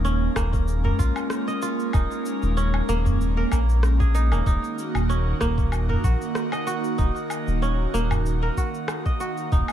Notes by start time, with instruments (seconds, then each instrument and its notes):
Already playing: analog synth bass D#1, analog synth pad G#3 A#3 C#4, synth texture A#3 A#4, kora D#4 F#4
0.05 kora C#4, cabasa
0.36 analog synth bass D#1, kora A#3, kick, cross-stick, cabasa, low woodblock
0.53 kick, cabasa
0.68 cabasa
0.84 kora A#4, udu
0.99 analog synth bass A#1, kora F4, kick, cabasa
1.16 cabasa, low woodblock
1.30 cross-stick, cabasa
1.48 kora D#5, cabasa
1.62 kora F4, cabasa
1.80 cabasa
1.93 analog synth bass D#1, kora D#4, kick, cabasa, low woodblock
2.11 cabasa
2.26 cabasa
2.43 analog synth bass D#1, cabasa
2.57 kora C#4, cabasa
2.74 low woodblock
2.89 analog synth bass D#1, kora A#3, cabasa
3.06 udu, cabasa
3.21 cabasa
3.37 kora A#4
3.51 analog synth bass A#1, kora A#3, kick, cabasa, low woodblock
3.69 cabasa
3.83 cross-stick, cabasa
4.00 kora G#4, kick, cabasa
4.15 kora D#4, cabasa
4.32 analog synth bass D#1, kora A#3, cabasa, low woodblock
4.45 analog synth bass D#1, analog synth pad D#3 D#4 F#4, kora D#4, kick, cabasa
4.64 cabasa
4.79 cabasa
4.95 analog synth bass D#1, cabasa, low woodblock
5.09 kora C#4, cabasa
5.41 analog synth bass D#1, kora A#3, kick, cross-stick, cabasa
5.58 kick, cabasa
5.72 cabasa, low woodblock
5.89 kora A#4, udu
6.04 analog synth bass A#1, kora F#4, kick, cabasa
6.21 cabasa
6.35 cross-stick, cabasa
6.52 kora D#5, cabasa, low woodblock
6.67 kora F#4, cabasa
6.84 cabasa
6.98 analog synth bass D#1, kora D#4, kick, cabasa
7.16 cabasa
7.30 cabasa, low woodblock
7.48 analog synth bass D#1, cabasa
7.62 kora C#4, cabasa
7.94 analog synth bass D#1, kora A#3, cabasa
8.11 udu, cabasa, low woodblock
8.26 cabasa
8.43 kora A#4
8.57 kora F#4, kick, cabasa
8.74 cabasa
8.88 cross-stick, cabasa, low woodblock
9.06 kora D#5, kick, cabasa
9.20 kora F#4, cabasa
9.37 cabasa
9.52 analog synth bass D#1, analog synth pad G#3 A#3 C#4, kora D#4, kick, cabasa
9.68 cabasa, low woodblock